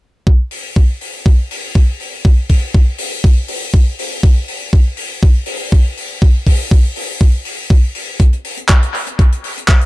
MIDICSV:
0, 0, Header, 1, 2, 480
1, 0, Start_track
1, 0, Tempo, 495868
1, 258, Time_signature, 4, 2, 24, 8
1, 9541, End_track
2, 0, Start_track
2, 0, Title_t, "Drums"
2, 260, Note_on_c, 9, 36, 97
2, 356, Note_off_c, 9, 36, 0
2, 492, Note_on_c, 9, 46, 88
2, 589, Note_off_c, 9, 46, 0
2, 739, Note_on_c, 9, 36, 104
2, 836, Note_off_c, 9, 36, 0
2, 978, Note_on_c, 9, 46, 91
2, 1075, Note_off_c, 9, 46, 0
2, 1218, Note_on_c, 9, 36, 100
2, 1315, Note_off_c, 9, 36, 0
2, 1460, Note_on_c, 9, 46, 97
2, 1557, Note_off_c, 9, 46, 0
2, 1697, Note_on_c, 9, 36, 100
2, 1794, Note_off_c, 9, 36, 0
2, 1934, Note_on_c, 9, 46, 92
2, 2030, Note_off_c, 9, 46, 0
2, 2177, Note_on_c, 9, 36, 103
2, 2274, Note_off_c, 9, 36, 0
2, 2412, Note_on_c, 9, 46, 91
2, 2417, Note_on_c, 9, 36, 57
2, 2508, Note_off_c, 9, 46, 0
2, 2514, Note_off_c, 9, 36, 0
2, 2657, Note_on_c, 9, 36, 110
2, 2754, Note_off_c, 9, 36, 0
2, 2887, Note_on_c, 9, 46, 106
2, 2984, Note_off_c, 9, 46, 0
2, 3137, Note_on_c, 9, 36, 105
2, 3234, Note_off_c, 9, 36, 0
2, 3369, Note_on_c, 9, 46, 104
2, 3466, Note_off_c, 9, 46, 0
2, 3617, Note_on_c, 9, 36, 109
2, 3714, Note_off_c, 9, 36, 0
2, 3860, Note_on_c, 9, 46, 102
2, 3957, Note_off_c, 9, 46, 0
2, 4098, Note_on_c, 9, 36, 105
2, 4195, Note_off_c, 9, 36, 0
2, 4336, Note_on_c, 9, 46, 96
2, 4433, Note_off_c, 9, 46, 0
2, 4578, Note_on_c, 9, 36, 110
2, 4675, Note_off_c, 9, 36, 0
2, 4809, Note_on_c, 9, 46, 101
2, 4906, Note_off_c, 9, 46, 0
2, 5059, Note_on_c, 9, 36, 112
2, 5156, Note_off_c, 9, 36, 0
2, 5282, Note_on_c, 9, 46, 112
2, 5379, Note_off_c, 9, 46, 0
2, 5540, Note_on_c, 9, 36, 109
2, 5636, Note_off_c, 9, 36, 0
2, 5782, Note_on_c, 9, 46, 89
2, 5879, Note_off_c, 9, 46, 0
2, 6020, Note_on_c, 9, 36, 106
2, 6117, Note_off_c, 9, 36, 0
2, 6256, Note_on_c, 9, 46, 106
2, 6259, Note_on_c, 9, 36, 57
2, 6353, Note_off_c, 9, 46, 0
2, 6356, Note_off_c, 9, 36, 0
2, 6499, Note_on_c, 9, 36, 112
2, 6596, Note_off_c, 9, 36, 0
2, 6735, Note_on_c, 9, 46, 102
2, 6832, Note_off_c, 9, 46, 0
2, 6978, Note_on_c, 9, 36, 114
2, 7075, Note_off_c, 9, 36, 0
2, 7211, Note_on_c, 9, 46, 92
2, 7308, Note_off_c, 9, 46, 0
2, 7456, Note_on_c, 9, 36, 110
2, 7553, Note_off_c, 9, 36, 0
2, 7694, Note_on_c, 9, 46, 95
2, 7790, Note_off_c, 9, 46, 0
2, 7934, Note_on_c, 9, 42, 85
2, 7936, Note_on_c, 9, 36, 102
2, 8031, Note_off_c, 9, 42, 0
2, 8033, Note_off_c, 9, 36, 0
2, 8061, Note_on_c, 9, 42, 46
2, 8158, Note_off_c, 9, 42, 0
2, 8175, Note_on_c, 9, 46, 100
2, 8272, Note_off_c, 9, 46, 0
2, 8298, Note_on_c, 9, 42, 50
2, 8395, Note_off_c, 9, 42, 0
2, 8407, Note_on_c, 9, 39, 101
2, 8409, Note_on_c, 9, 42, 97
2, 8417, Note_on_c, 9, 36, 106
2, 8504, Note_off_c, 9, 39, 0
2, 8506, Note_off_c, 9, 42, 0
2, 8513, Note_off_c, 9, 36, 0
2, 8544, Note_on_c, 9, 42, 53
2, 8641, Note_off_c, 9, 42, 0
2, 8659, Note_on_c, 9, 46, 97
2, 8756, Note_off_c, 9, 46, 0
2, 8777, Note_on_c, 9, 42, 53
2, 8874, Note_off_c, 9, 42, 0
2, 8894, Note_on_c, 9, 42, 73
2, 8896, Note_on_c, 9, 36, 110
2, 8991, Note_off_c, 9, 42, 0
2, 8993, Note_off_c, 9, 36, 0
2, 9025, Note_on_c, 9, 42, 52
2, 9122, Note_off_c, 9, 42, 0
2, 9136, Note_on_c, 9, 46, 94
2, 9233, Note_off_c, 9, 46, 0
2, 9268, Note_on_c, 9, 42, 52
2, 9365, Note_off_c, 9, 42, 0
2, 9370, Note_on_c, 9, 39, 108
2, 9372, Note_on_c, 9, 42, 92
2, 9375, Note_on_c, 9, 36, 105
2, 9466, Note_off_c, 9, 39, 0
2, 9468, Note_off_c, 9, 42, 0
2, 9472, Note_off_c, 9, 36, 0
2, 9498, Note_on_c, 9, 42, 51
2, 9541, Note_off_c, 9, 42, 0
2, 9541, End_track
0, 0, End_of_file